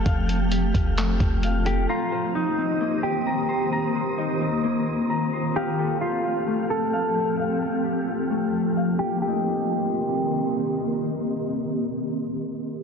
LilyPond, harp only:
\new Staff \with { instrumentName = "Harp" } { \time 4/4 \key c \dorian \tempo 4 = 131 <a f' a' f''>8 a'8 g'8 f'8 a4 f''8 a'8 | bes''8 c''8 ees'8 c'8 bes4 bes''8 c''8 | bes''8 c''8 ees'8 c'8 bes4 bes''8 c''8 | f''8 a'8 g'8 f'8 a4 f''8 a'8 |
f''8 a'8 g'8 f'8 a4 f''8 a'8 | <bes c' ees'>1~ | <bes c' ees'>1 | }